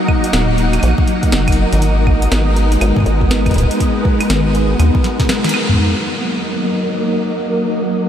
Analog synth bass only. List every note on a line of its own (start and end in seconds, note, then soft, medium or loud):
0.33 0.79 D#1 loud
0.83 0.94 A#1 loud
1.32 1.66 F#1 medium
1.73 2.27 G#1 loud
2.32 2.77 G#1 loud
2.81 2.92 G#1 loud
3.06 3.51 G#1 medium
3.56 3.67 D#1 medium
4.30 4.75 G#1 loud
4.80 4.91 D#2 loud